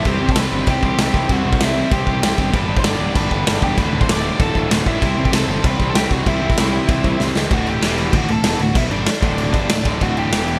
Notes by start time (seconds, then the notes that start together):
0.05 C2 C3 G3 C4 E4 G4 C5 G5, kick, crash
0.20 C2 C3 G3 C4
0.29 A4 A5, kick
0.35 C2 C3 G3 C4 B4, snare, crash
0.40 B5
0.52 G1 C3 G3 C4
0.67 C2 C3 G3 C4 G4 G5, kick, crash
0.83 C2 C3 G3 C4, kick
0.98 C2 C3 G3 C4 G4 G5, snare, crash
1.14 C2 C3 G3 C4, kick
1.29 C2 C3 G3 C4 E4 F#4 G4 C5, kick, crash
1.33 F#5
1.45 C2 C3 G3 C4
1.53 kick
1.59 C2 C3 G3 C4 E4, snare, crash
1.64 E5
1.75 C3 G3 C4
1.91 C2 C3 G3 C4 G4 G5, kick, crash
2.07 C2 C3 G3 C4, kick
2.22 C2 C3 G3 C4 G4 G5, snare, crash
2.37 G1 C3 G3 C4 G4 G5, kick
2.52 G1 G2 D3 G3 B3 D4 G4 B4 B5, kick, crash
2.67 G1 G2 D3 G3
2.77 C5 C6, kick
2.83 G1 G2 D3 G3 D5 D6, snare, crash
2.99 D1 G2 D3 G3
3.15 G1 G2 D3 G3 B4 B5, kick, crash
3.31 G1 G2 D3 G3, kick
3.46 G1 G2 D3 G3, snare, crash
3.62 E1 G2 D3 G3 G4 G5, kick
3.77 D1 D2 A2 D3 A3 F#4 B4 B5, kick, crash
3.93 D1 D2 A2 D3
4.01 C5 C6, kick
4.09 D1 D2 A2 D3 D5 D6, snare, crash
4.23 D2 A2 D3
4.39 D1 D2 A2 D3 A4 A5, kick, crash
4.55 D1 D2 A2 D3, kick
4.70 D1 D2 A2 D3, snare, crash
4.85 A1 D2 A2 D3 E4 E5, kick
5.00 C2 C3 G3 C4 E4 G4 C5, kick, crash
5.17 C2 C3 G3 C4
5.25 G4 G5, kick
5.32 C2 C3 G3 C4 A4 A5, snare, crash
5.48 G1 C3 G3 C4
5.63 C2 C3 G3 C4 B4 B5, kick, crash
5.78 C2 C3 G3 C4, kick
5.89 A4 A5
5.94 C2 C3 G3 C4 G4 G5, snare, crash
6.10 C2 C3 G3 C4 F#4 F#5, kick
6.26 C2 C3 G3 C4 E4 G4 C5 E5, kick, crash
6.41 C2 C3 G3 C4
6.50 kick
6.57 C2 C3 G3 C4, snare, crash
6.72 C3 G3 C4
6.88 C2 C3 G3 C4, kick, crash
7.04 C2 C3 G3 C4, kick
7.19 C2 C3 G3 C4, snare
7.35 C#2 C3 G3 C4, snare
7.50 D1 D2 A2 D3 F#4 F#5, kick, crash
7.66 G4 G5, crash
7.81 E1 E2 B2 E3, snare, crash
7.98 crash
8.12 D1 D2 A2 D3 F#4, kick, crash
8.18 F#5
8.28 D1 D2 A2 A4, crash
8.32 A5
8.42 E1 E2 B2 E3 A4, snare, crash
8.46 A5
8.58 D1 D2 A2 F#4 F#5, crash
8.75 B1 B2 F#3 B3 E4 E5, kick, crash
8.90 G1 G2 D3 G3 D4 D5, crash
9.06 snare, crash
9.22 D1 D2 A2 D3, kick, crash
9.38 crash
9.53 G1 G2 D3 G3, kick, crash
9.69 D1 D2 A2, snare, crash
9.85 D1 D2 A2 D3, kick, crash
10.01 D1 D2 A2 D3 F#4 F#5, kick, crash
10.17 G4 G5, crash
10.32 E1 E2 B2 E3, snare, crash
10.48 crash